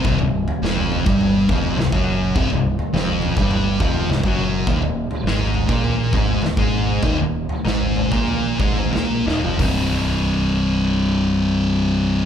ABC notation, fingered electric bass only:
X:1
M:4/4
L:1/16
Q:1/4=102
K:Cm
V:1 name="Fingered electric bass" clef=bass
C,,, C,,,2 z F,,,3 G,,,3 F,,,2 C,,, ^F,,,3 | C,,, C,,,2 z F,,,3 G,,,3 F,,,2 C,,, ^F,,,3 | E,,, E,,,2 z A,,,3 B,,,3 A,,,2 E,,, A,,,3 | E,,, E,,,2 z A,,,3 B,,,3 A,,,2 B,,,2 E,,, F,,, |
C,,,16 |]